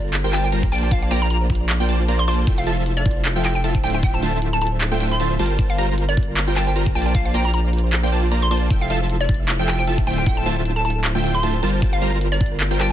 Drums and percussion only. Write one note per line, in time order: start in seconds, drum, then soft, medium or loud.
0.13 clap loud
0.13 closed hi-hat medium
0.33 clap medium
0.33 closed hi-hat medium
0.52 closed hi-hat medium
0.63 kick medium
0.72 closed hi-hat medium
0.75 closed hi-hat medium
0.78 closed hi-hat medium
0.91 kick loud
0.91 closed hi-hat medium
1.11 closed hi-hat medium
1.30 closed hi-hat medium
1.50 kick medium
1.50 closed hi-hat medium
1.55 closed hi-hat medium
1.69 clap loud
1.69 closed hi-hat medium
1.89 closed hi-hat medium
2.08 closed hi-hat medium
2.28 closed hi-hat medium
2.31 closed hi-hat medium
2.34 closed hi-hat medium
2.47 kick loud
2.47 closed hi-hat medium
2.47 crash medium
2.67 closed hi-hat medium
2.86 closed hi-hat medium
3.06 kick loud
3.06 closed hi-hat medium
3.11 closed hi-hat medium
3.25 clap loud
3.25 closed hi-hat medium
3.45 clap medium
3.45 closed hi-hat medium
3.64 closed hi-hat medium
3.75 kick medium
3.84 closed hi-hat medium
3.87 closed hi-hat medium
3.90 closed hi-hat medium
4.03 kick loud
4.03 closed hi-hat medium
4.22 closed hi-hat medium
4.42 closed hi-hat medium
4.61 closed hi-hat medium
4.67 closed hi-hat medium
4.81 clap loud
4.81 closed hi-hat medium
5.00 closed hi-hat medium
5.20 closed hi-hat medium
5.39 closed hi-hat medium
5.43 closed hi-hat medium
5.46 closed hi-hat medium
5.59 kick loud
5.59 closed hi-hat medium
5.78 closed hi-hat medium
5.98 closed hi-hat medium
6.17 kick loud
6.17 closed hi-hat medium
6.23 closed hi-hat medium
6.37 clap loud
6.37 closed hi-hat medium
6.56 clap medium
6.56 closed hi-hat medium
6.76 closed hi-hat medium
6.86 kick medium
6.95 closed hi-hat soft
6.99 closed hi-hat medium
7.02 closed hi-hat medium
7.15 kick loud
7.15 closed hi-hat medium
7.34 closed hi-hat medium
7.54 closed hi-hat medium
7.73 closed hi-hat soft
7.79 closed hi-hat medium
7.93 clap loud
7.93 closed hi-hat medium
8.12 closed hi-hat medium
8.32 closed hi-hat medium
8.51 closed hi-hat soft
8.55 closed hi-hat medium
8.58 closed hi-hat medium
8.71 kick loud
8.71 closed hi-hat medium
8.90 closed hi-hat medium
9.10 closed hi-hat medium
9.29 kick loud
9.29 closed hi-hat soft
9.34 closed hi-hat medium
9.49 clap loud
9.49 closed hi-hat medium
9.68 clap medium
9.68 closed hi-hat medium
9.87 closed hi-hat medium
9.98 kick medium
10.07 closed hi-hat soft
10.11 closed hi-hat medium
10.14 closed hi-hat medium
10.26 kick loud
10.26 closed hi-hat medium
10.46 closed hi-hat medium
10.65 closed hi-hat medium
10.85 closed hi-hat soft
10.90 closed hi-hat medium
11.04 clap loud
11.04 closed hi-hat medium
11.24 closed hi-hat medium
11.43 closed hi-hat medium
11.63 closed hi-hat soft
11.66 closed hi-hat medium
11.69 closed hi-hat medium
11.82 kick loud
11.82 closed hi-hat medium
12.02 closed hi-hat medium
12.21 closed hi-hat medium
12.41 kick loud
12.41 closed hi-hat medium
12.46 closed hi-hat medium
12.60 clap loud
12.60 closed hi-hat medium
12.80 clap medium
12.80 closed hi-hat medium